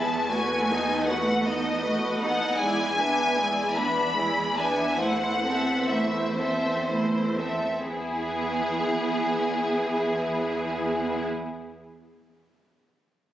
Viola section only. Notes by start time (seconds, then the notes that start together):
Already playing: B3 G#4
0.31 A3 F#4
0.70 B3 D#4
1.09 A3 F#4
1.48 B3 D#4
1.85 A3 F#4
2.22 B3 D#4
2.59 G#3 E4
2.98 B3 D4
3.37 G#3 E4
3.77 B3 D4
4.17 G#3 E4
4.59 B3 D4
5.01 A3 E4
5.44 C4
5.89 A3 E4
6.37 C4
6.86 A3 E4
7.39 C4
7.88 B3